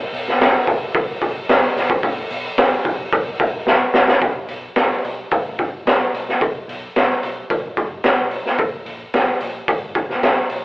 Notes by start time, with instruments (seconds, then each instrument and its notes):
0.13 fingered electric bass B1, open hi-hat
0.28 snare
0.39 fingered electric bass B1, snare, open hi-hat
0.67 fingered electric bass B1, kick, open hi-hat
0.94 fingered electric bass B1, kick, open hi-hat
1.21 fingered electric bass B1, kick, open hi-hat
1.49 fingered electric bass B2, snare, open hi-hat
1.76 fingered electric bass B1, snare, open hi-hat
1.90 kick
2.02 fingered electric bass B1, kick, open hi-hat
2.30 fingered electric bass B1, open hi-hat
2.57 fingered electric bass B1, snare, open hi-hat
2.85 fingered electric bass B1, kick, open hi-hat
3.12 fingered electric bass B1, kick, open hi-hat
3.39 fingered electric bass B1, kick, open hi-hat
3.66 fingered electric bass B1, snare
3.94 fingered electric bass B1, snare
4.08 snare
4.20 fingered electric bass B1, kick, open hi-hat
4.48 fingered electric bass B1, open hi-hat
4.76 fingered electric bass B1, snare, open hi-hat
5.04 fingered electric bass B1, open hi-hat
5.31 fingered electric bass A1, kick, open hi-hat
5.58 kick, open hi-hat
5.85 fingered electric bass B1, snare, open hi-hat
6.14 fingered electric bass B1, open hi-hat
6.29 snare
6.41 fingered electric bass B1, kick, open hi-hat
6.68 fingered electric bass B1, open hi-hat
6.96 fingered electric bass B1, snare, open hi-hat
7.23 fingered electric bass B1, open hi-hat
7.50 fingered electric bass B1, kick, open hi-hat
7.77 fingered electric bass F#1, kick, open hi-hat
8.04 fingered electric bass B1, snare, open hi-hat
8.31 open hi-hat
8.46 snare
8.58 fingered electric bass A#1, kick, open hi-hat
8.86 fingered electric bass A#1, open hi-hat
9.14 fingered electric bass A#1, snare, open hi-hat
9.40 fingered electric bass A#1, open hi-hat
9.68 fingered electric bass G#1, kick, open hi-hat
9.95 kick, open hi-hat
10.10 snare
10.23 fingered electric bass A#1, snare, open hi-hat
10.49 fingered electric bass A#1, open hi-hat